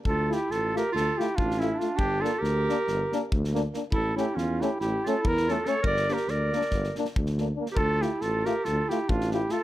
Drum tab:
SD |--o-o-o-o-o--oo-o-|--o-o-o-o-o--oo-o-|--o-o-o-o-o--oo-o-|-oooo-oooooo-oo--o|
BD |o-----------o-----|o-----------o-----|o-----------o-----|o-------o---o-----|

SD |--o-o-o-o-o--oo-o-|
BD |o-----------o-----|